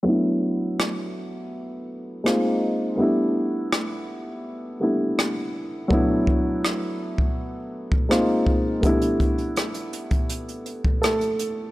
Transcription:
<<
  \new Staff \with { instrumentName = "Grand piano" } { \time 4/4 \key d \major \tempo 4 = 82 r1 | r1 | r1 | r2. <a a'>4 | }
  \new Staff \with { instrumentName = "Grand piano" } { \time 4/4 \key d \major <fis a b d' e'>2. <gis ais bis dis' eis'>4 | <g a b d' e'>2~ <g a b d' e'>8 <g a b d' e'>4. | <fis a b d' e'>2. <gis ais bis dis' eis'>4 | <g a b d' e'>1 | }
  \new DrumStaff \with { instrumentName = "Drums" } \drummode { \time 4/4 r4 ss4 r4 ss4 | r4 ss4 r4 ss4 | bd8 bd8 ss8. bd16 r8. bd16 ss8 bd8 | <hh bd>16 hh16 <hh bd>16 hh16 <hh ss>16 hh16 hh16 <hh bd>16 hh16 hh16 hh16 bd16 <hh ss>16 hh16 hh8 | }
>>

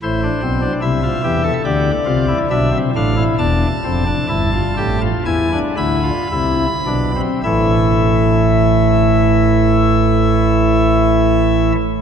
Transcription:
<<
  \new Staff \with { instrumentName = "Pipe organ" } { \time 4/4 \key a \minor \tempo 4 = 60 << { c''4 e''4 d''4 e''8 f''8 | a''2 gis''8 b''4. | <e a e''>1 | } \\ { e'16 d'16 c'16 d'16 e'16 f'16 g'16 a'16 g'8 f'16 e'16 d'16 c'16 d'16 e'16 | d'8 c'16 d'16 e'16 f'16 g'16 f'16 e'16 d'16 e'16 f'16 e'8 d'16 c'16 | e'1 | } >> }
  \new Staff \with { instrumentName = "Pipe organ" } { \clef bass \time 4/4 \key a \minor <a,, a,>8 <b,, b,>8 <c, c>8 <e, e>8 <d, d>8 <c, c>8 <b,, b,>8 <a,, a,>8 | <e,, e,>8 <f,, f,>8 <g,, g,>8 <a,, a,>8 <e, e>8 <d, d>8 <c, c>8 <b,, b,>8 | <a,, a,>1 | }
>>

